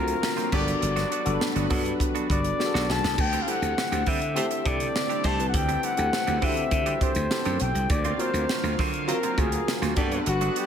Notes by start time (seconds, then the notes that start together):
Already playing: D2 D3 F#3 A#3 C4 F4 F#4 A4 A#4 F5
0.00 A#4
0.08 muted clean electric guitar stroke, closed hi-hat
0.22 muted clean electric guitar stroke, snare
0.37 F#3 A#3 C4 F4, snare, closed hi-hat
0.52 G1 G3 B3 D4 F#4 G4 A4 B4 D5, kick, crash
0.67 muted clean electric guitar stroke, closed hi-hat
0.81 G1, muted clean electric guitar stroke, closed hi-hat
0.96 F#3 B3 D4 F#4, snare, closed hi-hat
1.10 F#3 B3 D4 F#4, closed hi-hat
1.25 G1 B3 D4 F#4 A4, muted clean electric guitar stroke, closed hi-hat
1.41 muted clean electric guitar stroke, snare
1.56 G1 F#3 B3 D4 F#4, closed hi-hat
1.70 G2 F#3 B3 D4 F#4 A4, kick, open hi-hat
1.85 muted clean electric guitar stroke, closed hi-hat
2.00 muted clean electric guitar stroke, kick, closed hi-hat
2.15 F#3 B3 D4 F#4, closed hi-hat
2.29 G1 F#3 B3 D4 F#4 D5, kick, closed hi-hat
2.44 muted clean electric guitar stroke, closed hi-hat
2.58 B3 D4 F#4 G#4, muted clean electric guitar stroke, snare
2.66 A4
2.74 B1 F#3 B3 D4 F#4, snare
2.89 B1 A5, snare
3.04 C2, muted clean electric guitar stroke, snare
3.18 D2 D3 A3 C4 G4 G5, muted clean electric guitar stroke, kick, crash
3.33 G3 C4 D4 G4, closed hi-hat
3.42 F5
3.47 G3 C4 D4 E4 G4 A4 F#5, closed hi-hat
3.62 D2, muted clean electric guitar stroke, closed hi-hat
3.78 muted clean electric guitar stroke, snare
3.92 D2 G3 C4 D4 G4, closed hi-hat
4.06 D3 G3 C4 D4 G4 E5, kick, open hi-hat
4.22 muted clean electric guitar stroke, closed hi-hat
4.35 A3 C4 E4 G4 A4 C5, muted clean electric guitar stroke, closed hi-hat
4.51 muted clean electric guitar stroke, closed hi-hat
4.64 C3 G3 C4 D4 E4 G4 A4 D5, kick, closed hi-hat
4.80 G3 C4 D4 G4, closed hi-hat
4.95 muted clean electric guitar stroke, snare
5.09 G3 C4 D4 G4, closed hi-hat
5.24 C2 A3 G4 C5 A5, kick, closed hi-hat
5.38 C4 E4 G4 B4, muted clean electric guitar stroke, closed hi-hat
5.49 F#5
5.54 D2 G5, muted clean electric guitar stroke, kick, closed hi-hat
5.68 G3 C4 D4 G4, closed hi-hat
5.83 G3 C4 D4 G4 F#5, closed hi-hat
5.97 D2 C4 E4 G4 A4, muted clean electric guitar stroke, closed hi-hat
6.13 muted clean electric guitar stroke, snare
6.26 D2 G3 C4 D4 G4, closed hi-hat
6.41 D3 G3 C4 D4 E4 F#4 G4 A4 E5, kick, open hi-hat
6.49 G4
6.56 muted clean electric guitar stroke, closed hi-hat
6.71 D3, muted clean electric guitar stroke, kick, closed hi-hat
6.86 G3 C4 D4 G4, closed hi-hat
7.01 G3 C4 D4 G4 C5, kick, closed hi-hat
7.15 D2, closed hi-hat
7.31 C4 E4 G4 A4, muted clean electric guitar stroke, snare
7.45 F#2 G3 C4 D4 G4, closed hi-hat
7.60 B1 G5, muted clean electric guitar stroke, closed hi-hat
7.75 C2, muted clean electric guitar stroke, closed hi-hat
7.89 D2 D3 F#3 A#3 D5 F5, muted clean electric guitar stroke, kick, closed hi-hat
8.04 F#3 A#3 C4 F4, closed hi-hat
8.18 F#3 A#3 C4 F4 F#4 A#4 C5, closed hi-hat
8.34 D2, closed hi-hat
8.49 muted clean electric guitar stroke, snare
8.63 D2 F#3 A#3 C4 F4, closed hi-hat
8.79 D3 F#3 A#3 C4 F4, kick, snare, open hi-hat
8.94 muted clean electric guitar stroke, closed hi-hat
9.07 F#3 C4 F4 F#4 A#4 C5, muted clean electric guitar stroke, closed hi-hat
9.23 F#3 A#3 C4 F4, closed hi-hat
9.37 D2 F#3 A#3 C4 F4 F#4 G#4 A#4, kick, closed hi-hat
9.52 muted clean electric guitar stroke, closed hi-hat
9.67 muted clean electric guitar stroke, snare
9.82 D2 F#3 A#3 C4 F4, snare, closed hi-hat
9.96 G2 G3 B3 D4 F#4 G4 A4 B4 D5 F#5, muted clean electric guitar stroke, kick, closed hi-hat
10.12 muted clean electric guitar stroke, closed hi-hat
10.26 G1 F#4, muted clean electric guitar stroke, closed hi-hat
10.41 F#3 B3 D4 F#4, closed hi-hat
10.56 F#3 B3 D4 F#4 G4, closed hi-hat